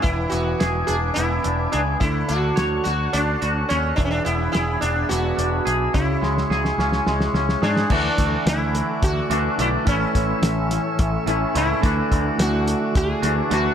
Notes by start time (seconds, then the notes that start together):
Already playing: E5 G#5
0.02 E1 E3 E4 B4 D6, kick, closed hi-hat
0.29 E1 B3 F#4, closed hi-hat
0.60 E1 G#4, snare, closed hi-hat
0.87 E1 D4 G#4, closed hi-hat
1.14 E1 B3 E4, closed hi-hat
1.44 E1 D4, closed hi-hat
1.72 C#2 D4 G#4, closed hi-hat
2.00 D2 D3 D4 E4 A4 F#5 C#6, kick, closed hi-hat
2.28 D2 D4 F#4, closed hi-hat
2.56 D2 C#5, snare, closed hi-hat
2.84 D2 F#4, snare, closed hi-hat
3.13 D2 D4, closed hi-hat
3.41 D2 F#4, closed hi-hat
3.55 C#4
3.69 D#2 C#4 C#5, snare, closed hi-hat
3.96 E1 E3 D4 G#4 E5 B5, kick, closed hi-hat
4.05 C#4
4.11 D4
4.25 E1 B3 E4, closed hi-hat
4.52 E1 E4 G#4, snare, closed hi-hat
4.81 E1 D4, closed hi-hat
5.09 E1 B3 F#4, snare, closed hi-hat
5.37 E1 D4, closed hi-hat
5.65 B1 G#4, closed hi-hat
5.93 C#2 C#3 E4 G#4 C#5 C#6, kick, closed hi-hat
6.21 C#2 G#3, snare
6.38 snare
6.50 C#2 G#4, snare
6.65 snare
6.78 C#2 C#4, snare
6.93 snare
7.07 C#2 G#3, snare
7.21 snare
7.34 C#2 C#4, snare
7.49 snare
7.62 G#2 D4 G#4, snare
7.77 snare
7.90 D2 D3 E3 A3 D4 F#4 E5 F#5 D6, kick, crash
8.18 D2, kick, closed hi-hat
8.46 D2 E4, snare, closed hi-hat
8.75 closed hi-hat
9.03 D2 F#4, kick, closed hi-hat
9.30 D2 D3 E3 A3 D4 F#4, closed hi-hat
9.58 B1 D3 E3 A3 D4 E4 F#4, closed hi-hat
9.85 A1 A2 E3 A3 C#4 E4 C#6 E6, kick, closed hi-hat
10.15 A1, kick, snare, closed hi-hat
10.42 A1, snare, closed hi-hat
10.71 snare, closed hi-hat
10.99 A1, kick, closed hi-hat
11.26 A1 A2 E3 A3 C#4 E4, closed hi-hat
11.54 C#2 A2 E3 A3 C#4 E4, closed hi-hat
11.81 D2 D3 E3 A3 D4 F#4 F#5 D6, kick, closed hi-hat
12.12 D2, kick, closed hi-hat
12.39 D2 F#4, snare, closed hi-hat
12.68 closed hi-hat
12.95 D2 G#4, kick, snare, closed hi-hat
13.22 D2 D3 E3 A3 D4 F#4, closed hi-hat
13.49 D2 D3 E3 A3 D4 F#4, snare, closed hi-hat